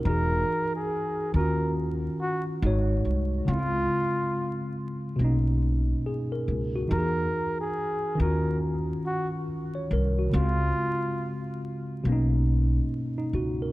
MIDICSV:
0, 0, Header, 1, 4, 480
1, 0, Start_track
1, 0, Key_signature, -5, "major"
1, 0, Tempo, 857143
1, 28, Time_signature, 4, 2, 24, 8
1, 7684, End_track
2, 0, Start_track
2, 0, Title_t, "Flugelhorn"
2, 0, Program_c, 0, 56
2, 32, Note_on_c, 0, 70, 102
2, 424, Note_on_c, 0, 68, 75
2, 432, Note_off_c, 0, 70, 0
2, 755, Note_on_c, 0, 70, 85
2, 764, Note_off_c, 0, 68, 0
2, 969, Note_off_c, 0, 70, 0
2, 1237, Note_on_c, 0, 66, 82
2, 1364, Note_off_c, 0, 66, 0
2, 1951, Note_on_c, 0, 65, 104
2, 2553, Note_off_c, 0, 65, 0
2, 3875, Note_on_c, 0, 70, 99
2, 4235, Note_off_c, 0, 70, 0
2, 4261, Note_on_c, 0, 68, 81
2, 4571, Note_off_c, 0, 68, 0
2, 4598, Note_on_c, 0, 70, 78
2, 4810, Note_off_c, 0, 70, 0
2, 5074, Note_on_c, 0, 66, 87
2, 5203, Note_off_c, 0, 66, 0
2, 5798, Note_on_c, 0, 65, 105
2, 6397, Note_off_c, 0, 65, 0
2, 7684, End_track
3, 0, Start_track
3, 0, Title_t, "Tine electric piano"
3, 0, Program_c, 1, 4
3, 0, Control_c, 1, 64, 127
3, 0, Note_on_c, 1, 70, 61
3, 29, Note_on_c, 1, 52, 57
3, 36, Control_c, 1, 64, 0
3, 39, Note_on_c, 1, 63, 60
3, 45, Note_on_c, 1, 66, 50
3, 52, Note_on_c, 1, 68, 64
3, 144, Control_c, 1, 64, 127
3, 170, Note_off_c, 1, 70, 0
3, 749, Note_off_c, 1, 52, 0
3, 749, Note_on_c, 1, 51, 66
3, 753, Note_off_c, 1, 63, 0
3, 755, Control_c, 1, 64, 0
3, 757, Note_off_c, 1, 66, 0
3, 758, Note_on_c, 1, 61, 57
3, 760, Note_off_c, 1, 68, 0
3, 765, Note_on_c, 1, 65, 55
3, 774, Note_on_c, 1, 66, 79
3, 866, Control_c, 1, 64, 127
3, 1468, Note_off_c, 1, 51, 0
3, 1469, Note_on_c, 1, 56, 72
3, 1473, Note_off_c, 1, 61, 0
3, 1475, Control_c, 1, 64, 0
3, 1476, Note_off_c, 1, 65, 0
3, 1476, Note_on_c, 1, 63, 69
3, 1478, Note_off_c, 1, 66, 0
3, 1485, Note_on_c, 1, 66, 70
3, 1492, Note_on_c, 1, 73, 80
3, 1571, Control_c, 1, 64, 127
3, 1932, Note_on_c, 1, 49, 58
3, 1941, Note_off_c, 1, 56, 0
3, 1947, Note_on_c, 1, 56, 47
3, 1952, Note_off_c, 1, 63, 0
3, 1954, Control_c, 1, 64, 0
3, 1956, Note_off_c, 1, 66, 0
3, 1960, Note_off_c, 1, 73, 0
3, 1962, Note_on_c, 1, 60, 54
3, 1979, Note_on_c, 1, 64, 51
3, 2008, Note_off_c, 1, 64, 0
3, 2016, Note_on_c, 1, 65, 60
3, 2047, Control_c, 1, 64, 127
3, 2881, Note_off_c, 1, 49, 0
3, 2888, Note_off_c, 1, 56, 0
3, 2890, Note_on_c, 1, 47, 78
3, 2896, Note_off_c, 1, 60, 0
3, 2905, Note_on_c, 1, 58, 60
3, 2916, Control_c, 1, 64, 0
3, 2922, Note_on_c, 1, 61, 60
3, 2923, Note_off_c, 1, 65, 0
3, 2937, Note_on_c, 1, 63, 74
3, 3001, Control_c, 1, 64, 127
3, 3396, Note_on_c, 1, 68, 60
3, 3531, Note_off_c, 1, 68, 0
3, 3540, Note_on_c, 1, 70, 65
3, 3765, Note_off_c, 1, 70, 0
3, 3784, Note_on_c, 1, 66, 65
3, 3840, Note_off_c, 1, 47, 0
3, 3847, Note_off_c, 1, 58, 0
3, 3851, Note_on_c, 1, 52, 47
3, 3852, Note_off_c, 1, 63, 0
3, 3856, Note_off_c, 1, 61, 0
3, 3859, Note_on_c, 1, 63, 48
3, 3860, Note_off_c, 1, 66, 0
3, 3867, Note_on_c, 1, 66, 54
3, 3874, Note_on_c, 1, 67, 45
3, 3875, Control_c, 1, 64, 0
3, 3911, Note_on_c, 1, 68, 56
3, 3915, Note_off_c, 1, 67, 0
3, 3963, Control_c, 1, 64, 127
3, 4565, Note_on_c, 1, 51, 73
3, 4579, Note_off_c, 1, 52, 0
3, 4580, Note_on_c, 1, 61, 58
3, 4583, Note_off_c, 1, 63, 0
3, 4587, Note_off_c, 1, 66, 0
3, 4595, Control_c, 1, 64, 0
3, 4597, Note_on_c, 1, 65, 57
3, 4609, Note_off_c, 1, 68, 0
3, 4612, Note_on_c, 1, 66, 77
3, 4702, Control_c, 1, 64, 127
3, 5298, Note_off_c, 1, 65, 0
3, 5306, Note_off_c, 1, 66, 0
3, 5459, Note_on_c, 1, 73, 58
3, 5546, Note_off_c, 1, 73, 0
3, 5560, Note_on_c, 1, 70, 73
3, 5693, Note_off_c, 1, 70, 0
3, 5704, Note_on_c, 1, 66, 57
3, 5754, Note_off_c, 1, 51, 0
3, 5761, Note_off_c, 1, 61, 0
3, 5766, Note_on_c, 1, 49, 57
3, 5783, Note_on_c, 1, 56, 53
3, 5794, Control_c, 1, 64, 0
3, 5799, Note_on_c, 1, 60, 55
3, 5814, Note_on_c, 1, 65, 60
3, 5904, Control_c, 1, 64, 127
3, 5927, Note_off_c, 1, 66, 0
3, 6717, Note_off_c, 1, 49, 0
3, 6726, Note_off_c, 1, 56, 0
3, 6734, Note_off_c, 1, 60, 0
3, 6740, Note_on_c, 1, 47, 78
3, 6742, Note_off_c, 1, 65, 0
3, 6756, Control_c, 1, 64, 0
3, 6757, Note_on_c, 1, 58, 72
3, 6771, Note_on_c, 1, 61, 69
3, 6787, Note_on_c, 1, 63, 77
3, 6856, Control_c, 1, 64, 127
3, 7003, Note_off_c, 1, 63, 0
3, 7381, Note_on_c, 1, 63, 61
3, 7467, Note_off_c, 1, 63, 0
3, 7474, Note_on_c, 1, 66, 66
3, 7610, Note_off_c, 1, 66, 0
3, 7628, Note_on_c, 1, 70, 58
3, 7684, Note_off_c, 1, 47, 0
3, 7684, Note_off_c, 1, 58, 0
3, 7684, Note_off_c, 1, 61, 0
3, 7684, Note_off_c, 1, 70, 0
3, 7684, End_track
4, 0, Start_track
4, 0, Title_t, "Upright bass"
4, 0, Program_c, 2, 32
4, 29, Note_on_c, 2, 28, 107
4, 232, Note_off_c, 2, 28, 0
4, 750, Note_on_c, 2, 39, 102
4, 1156, Note_off_c, 2, 39, 0
4, 1469, Note_on_c, 2, 32, 114
4, 1672, Note_off_c, 2, 32, 0
4, 1707, Note_on_c, 2, 36, 83
4, 1911, Note_off_c, 2, 36, 0
4, 1948, Note_on_c, 2, 37, 108
4, 2152, Note_off_c, 2, 37, 0
4, 2908, Note_on_c, 2, 35, 87
4, 3315, Note_off_c, 2, 35, 0
4, 3628, Note_on_c, 2, 37, 81
4, 3832, Note_off_c, 2, 37, 0
4, 3868, Note_on_c, 2, 40, 107
4, 4072, Note_off_c, 2, 40, 0
4, 4590, Note_on_c, 2, 39, 100
4, 4996, Note_off_c, 2, 39, 0
4, 5548, Note_on_c, 2, 36, 94
4, 5752, Note_off_c, 2, 36, 0
4, 5788, Note_on_c, 2, 37, 117
4, 5991, Note_off_c, 2, 37, 0
4, 6749, Note_on_c, 2, 35, 98
4, 7156, Note_off_c, 2, 35, 0
4, 7466, Note_on_c, 2, 37, 81
4, 7670, Note_off_c, 2, 37, 0
4, 7684, End_track
0, 0, End_of_file